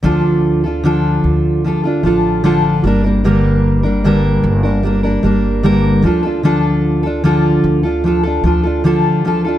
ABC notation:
X:1
M:4/4
L:1/16
Q:1/4=75
K:Dm
V:1 name="Steel-string acoustic guitar"
[D,F,DFA]3 [DFA] [D,F,DFA]4 [F,DFA] [DFA] [F,DFA]2 [D,F,DFA]2 [G,B,DB] [G,B,DB] | [G,,D,G,B,DB]3 [G,B,DB] [G,,D,G,B,DB]3 [G,B,DB] [G,B,DB] [G,B,DB] [G,B,DB]2 [G,,D,G,B,DB]2 [F,DFA] [DFA] | [D,F,DFA]3 [DFA] [D,F,DFA]3 [DFA] [F,DFA] [DFA] [F,DFA] [DFA] [D,F,DFA]2 [F,DFA] [DFA] |]
V:2 name="Upright bass" clef=bass
D,,6 D,,4 A,,,4 G,,,2- | G,,,6 G,,,4 G,,,4 D,,2- | D,,6 D,,4 D,,6 |]